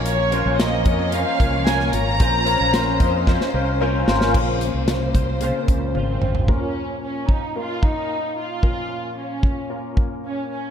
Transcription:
<<
  \new Staff \with { instrumentName = "Clean electric guitar" } { \time 4/4 \key bes \minor \tempo 4 = 112 <bes, bes des' f' bes'>8 <des' f' bes'>8 <bes, bes des' f' bes'>8 <des' f' bes'>8 <bes des' f' bes'>8 <des' f' bes'>8 <bes, bes des' f' bes'>4 | <bes, bes des' f' c''>8 <des' f' c''>8 <bes, bes des' f' c''>8 <des' f' c''>8 <bes des' f' c''>8 <des' f' c''>8 <bes, bes des' f' c''>4 | <bes, bes des' f' c''>8 <des' f' c''>8 <bes des' f' c''>8 <des' f' c''>8 <bes, bes des' f' c''>4 <bes des' f' c''>8 <des' f' c''>8 | r1 |
r1 | }
  \new Staff \with { instrumentName = "Grand piano" } { \time 4/4 \key bes \minor <bes des' f' bes' des''>8 <bes des' f' bes' c''>8 <bes des' f' bes' des''>8 <bes des' f' bes' des''>8 <bes des' f' bes' c''>8 <bes des' f' bes' des''>8 <bes des' f' bes' des''>8 <bes des' f' bes' des''>8 | <c' des' f' bes' c''>8 <c' des' f' bes' des''>8 <c' des' f' bes' c''>8 <c' des' f' bes' ees''>8 <c' des' f' bes' c''>8 <c' des' f' bes' c''>8 <c' des' f' bes' c''>8 <c' des' f' bes' c''>8 | r1 | <bes des' f' bes'>4. r8 <bes des' f' bes'>4. r8 |
<bes des' f' bes'>4. r8 <bes des' f' bes'>4. r8 | }
  \new Staff \with { instrumentName = "Grand piano" } { \clef bass \time 4/4 \key bes \minor r1 | r1 | <des bes c'>8 r4. <des bes c'>8 r4. | <bes, f>1 |
<bes, f>1 | }
  \new Staff \with { instrumentName = "Violin section" } { \time 4/4 \key bes \minor des''4 ees''4 f''4 aes''8 bes''8~ | bes''2~ bes''8 r4. | r2. c'4 | des'4 des'8 ees'8 f'8 ees'4 f'8~ |
f'4 des'4. r8 des'8 des'8 | }
  \new Staff \with { instrumentName = "String section" } { \time 4/4 \key bes \minor << { <f des'>1 | <des' c''>1 | <bes, c''>1 | r1 |
r1 | } \\ { bes1~ | bes1 | bes1 | r1 |
r1 | } >> }
  \new Staff \with { instrumentName = "Fretless electric bass" } { \clef bass \time 4/4 \key bes \minor bes,,8. bes,,8. f,8. r16 c,4 aes,,8 | bes,,8. bes,,8. f,8. r16 c,4 aes,,8 | bes,,8. c,4. r16 des,8 aes,,8 aes,,8 | r1 |
r1 | }
  \new DrumStaff \with { instrumentName = "Drums" } \drummode { \time 4/4 hh8 hh8 <hh sn>8 <hh bd>8 hh8 <hh bd>8 <hh sn>16 sn16 hh8 | <hh bd>8 hh8 <hh sn>8 <hh bd>8 <bd sn>16 sn8. r8 sn16 sn16 | <cymc bd>8 hh8 <hh sn>8 <hh bd>8 hh8 <hh bd>8 tommh8 toml16 tomfh16 | bd4 r8 bd8 r8 bd8 r4 |
bd4 r8 bd8 r8 bd8 r4 | }
>>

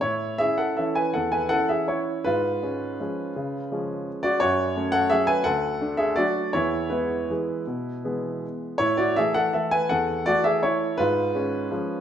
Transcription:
<<
  \new Staff \with { instrumentName = "Upright piano" } { \time 3/4 \key a \major \tempo 4 = 164 <e' cis''>4 <gis' e''>8 <a' fis''>8 <a' e''>8 <b' gis''>8 | <a' fis''>8 <b' gis''>8 <a' fis''>8 <gis' e''>8 <e' cis''>4 | <eis' b'>2.~ | <eis' b'>2~ <eis' b'>8 <fis' d''>8 |
<fis' cis''>4. <a' fis''>8 <gis' e''>8 <b' gis''>8 | <a' fis''>4. <gis' e''>8 <fis' d''>4 | <e' cis''>4 <e' b'>2~ | <e' b'>2 r4 |
<e' cis''>8 <fis' d''>8 <gis' e''>8 <a' fis''>8 <a' e''>8 <b' gis''>8 | <a' fis''>4 <fis' d''>8 <gis' e''>8 <e' cis''>4 | <eis' b'>2. | }
  \new Staff \with { instrumentName = "Upright piano" } { \clef bass \time 3/4 \key a \major a,4 <cis' e'>4 <e cis' e'>4 | e,4 <e cis' e'>2 | gis,4 <gis cis'>4 <eis gis cis'>4 | cis4 <eis gis cis'>2 |
fis,4 <a cis'>4 <fis a cis'>4 | d,4 <a d'>4 <fis a d'>4 | e,4 <gis b>4 <e gis b>4 | b,4 <e gis b>2 |
a,4 <e a>4 <e a>4 | e,4 <e a>2 | gis,4 <gis cis'>4 <eis gis cis'>4 | }
>>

